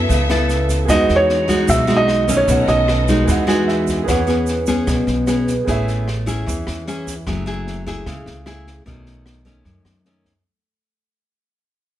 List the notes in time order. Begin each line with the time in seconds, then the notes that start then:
Already playing: B3 E4 A4 B4 E5 G#5
0.09 C#2 C#3, kick, snare, shaker
0.30 B3 E4 A4, cross-stick, snare, shaker
0.49 snare, shaker
0.69 kick, snare, shaker
0.85 E2 E3 D#4 F#4 G#4 B4 D#5, kick, cross-stick, snare, shaker
0.89 G#3 D#4 F#4 D#5 F#5
1.09 E2, snare, shaker
1.16 C#5
1.29 snare
1.48 G#3 D#4 F#4, kick, snare, shaker
1.67 B1 B2 E5, kick, cross-stick, snare, shaker
1.87 G#3 D#4 F#4, snare, shaker
1.97 D#5
2.08 cross-stick, snare
2.28 D#3 A3 C#4, kick, snare, shaker
2.37 C#5
2.46 B1 B2 C#4 A4 B4 C#5 D#5, kick, snare, shaker
2.51 F#5
2.67 B1 D#5, snare, shaker
2.88 cross-stick, snare
3.08 G#3 D#4 F#4, kick, snare, shaker
3.25 E2 E3 B3 F#4 G#4 B4, kick, snare, shaker
3.29 D#5 F#5
3.47 G#3 D#4 F#4 G#5, cross-stick, snare, shaker
3.67 E5, snare
3.87 kick, snare, shaker
4.04 G#4 B4 C#5
4.08 E2 E3 B3 C#4 G#4 F#5, kick, cross-stick, snare, shaker
4.27 B3 C#4 G#4, snare, shaker
4.47 snare, shaker
4.66 B3 C#4 G#4, kick, snare, shaker
4.87 B1 B2, kick, cross-stick, snare, shaker
5.07 B1, snare, shaker
5.27 B3 C#4 G#4, cross-stick, snare, shaker
5.47 kick, snare, shaker
5.65 A1 A3 C#4 E4 G#4 B4 C#5, kick, snare, shaker
5.70 E5
5.88 snare, shaker
6.08 cross-stick, snare
6.26 C#4 E4 G#4, kick, snare, shaker
6.46 E2 E3, kick, snare, shaker
6.67 E2, cross-stick, snare, shaker
6.87 C#4 E4 G#4, snare, shaker
7.07 kick, snare, shaker
7.27 F#1 F#3 A3 E4 G#4, kick, cross-stick, snare
7.46 A3 E4 G#4, snare
7.67 snare
7.86 A3 E4 G#4, kick, snare
8.06 C#2 C#3, kick, cross-stick, snare
8.26 C#2, snare
8.46 A3 E4 G#4, cross-stick, snare
8.66 kick, snare
8.86 B1 B2 D#3 A3 C#4, kick, snare
9.06 snare
9.26 cross-stick, snare
9.45 D#3 A3 C#4, kick, snare
9.65 F#2, kick, snare
9.85 F#2, cross-stick, snare
10.05 D#3 A3 C#4, snare
10.25 kick, snare